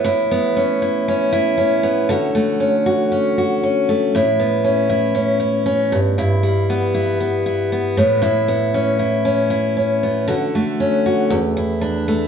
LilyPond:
\new Staff \with { instrumentName = "Steel-string acoustic guitar" } { \time 4/4 \key a \mixolydian \tempo 4 = 117 <a, e'>8 b8 cis'8 e'8 cis'8 e'8 cis'8 b8 | <d fis'>8 a8 cis'8 fis'8 cis'8 fis'8 cis'8 a8 | <a, e'>8 b8 cis'8 e'8 cis'8 e'8 cis'8 g,8 | <g, e'>8 g8 b8 e'8 b8 e'8 b8 a,8 |
<a, e'>8 b8 cis'8 e'8 cis'8 e'8 cis'8 b8 | <d fis'>8 a8 cis'8 fis'8 e,8 e'8 d'8 a8 | }